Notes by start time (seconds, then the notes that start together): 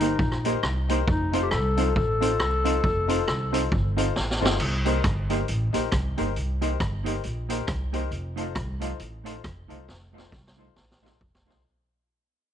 Already playing: G1 D#4
0.00 A#3 D#4 G4 A#4 C5, closed hi-hat
0.19 A#1, muted clean electric guitar stroke, kick
0.32 cross-stick
0.45 A#3 D#4 G4 A#4 C5, closed hi-hat
0.63 C2, cross-stick
0.89 A#3 D#4 G4 A#4 C5, closed hi-hat
1.08 F1 D#4, kick
1.32 C4 D#4 F4 A4 C5, closed hi-hat
1.43 G4
1.51 C2 A4, muted clean electric guitar stroke, cross-stick
1.77 C4 D#4 F4 A4 C5, closed hi-hat
1.96 A1 A4, kick
2.20 C4 D#4 F4 A4 C5, closed hi-hat
2.40 C2, cross-stick
2.64 C4 D#4 F4 A4 C5, closed hi-hat
2.84 F1, kick
3.08 C4 D#4 F4 A4 C5, closed hi-hat
3.27 C2, muted clean electric guitar stroke, cross-stick
3.52 C4 D#4 F4 A4 C5, closed hi-hat
3.71 G1, muted clean electric guitar stroke, kick
3.96 C4 D#4 F4 A4 C5, closed hi-hat
4.16 A1, snare
4.31 snare
4.40 G1 C4 D#4 F4 A4 C5
4.45 snare
4.60 C2, crash
4.85 A#3 D#4 G4 A#4 C5, closed hi-hat
5.04 G1, muted clean electric guitar stroke, kick, cross-stick, closed hi-hat
5.29 A#3 D#4 G4 A#4 C5, closed hi-hat
5.48 A1, closed hi-hat
5.73 A#1 A#3 D#4 G4 A#4 C5, closed hi-hat
5.92 C2, kick, cross-stick, closed hi-hat
6.17 G1 A#3 D#4 G4 A#4 C5, closed hi-hat
6.36 C2, closed hi-hat
6.61 A#3 D#4 G4 A#4 C5, closed hi-hat
6.79 G1, muted clean electric guitar stroke, kick, cross-stick, closed hi-hat
7.04 A#3 D#4 G4 A#4 C5, closed hi-hat
7.24 A#1, muted clean electric guitar stroke, closed hi-hat
7.49 A#3 D#4 G4 A#4 C5, closed hi-hat
7.67 C2, kick, cross-stick, closed hi-hat
7.92 A#3 D#4 G4 A#4 C5, closed hi-hat
8.11 F1, closed hi-hat
8.36 A3 D#4 F4 A4 C5, closed hi-hat
8.55 C2, muted clean electric guitar stroke, kick, cross-stick, closed hi-hat
8.80 A3 D#4 F4 A4 C5, closed hi-hat
8.99 A1, closed hi-hat
9.24 A3 D#4 F4 A4 C5, closed hi-hat
9.44 F1, kick, cross-stick, closed hi-hat
9.68 C2 A3 D#4 F4 A4 C5, closed hi-hat
9.88 F1, snare
10.13 A3 D#4 F4 A4 C5
10.18 snare
10.31 C2, muted clean electric guitar stroke, kick, snare
10.47 snare
10.57 A3 D#4 F4 A4 C5
10.75 A1, muted clean electric guitar stroke, snare
10.91 snare
11.02 A3 D#4 F4 A4 C5
11.06 snare
11.21 F1, kick
11.35 snare
11.46 C2 A3 D#4 F4 A4 C5
11.50 snare